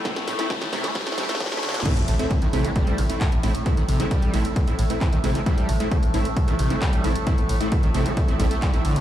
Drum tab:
CC |--------------------------------|x-------------------------------|--------------------------------|--------------------------------|
RD |--------------------------------|x---x---x---x---x---x---x---x---|x---x---x---x---x---x---x---x---|x---x---x---x---x---x---x---x---|
HH |x-x-o-x-x-x-o-x-x-x-o-x-x-x-o-x-|x-x-o-x-x-x-o-x-x-x-o-x-x-x-o-x-|x-x-o-x-x-x-o-x-x-x-o-x-x-x-o-x-|x-x-o-x-x-x-o-x-x-x-o-x-x-x-o-x-|
CP |--------------------------------|------------------------x-------|------------------------x-------|------------------------x-------|
SD |o-o-o-o-o-o-o-o-oooooooooooooooo|--------------------------------|--------------------------------|--------------------------------|
BD |o-------o-------o---o---o-------|o-------o-------o-------o-------|o-------o-------o-------o-------|o-------o-------o-------o-------|

CC |--------------------------------|
RD |x---x---x---x---x---x---x---x---|
HH |x-x-o-x-x-x-o-x-x-x-o-x-x-x-o-x-|
CP |------------------------x-------|
SD |--------------------------------|
BD |o-------o-------o---o---o-------|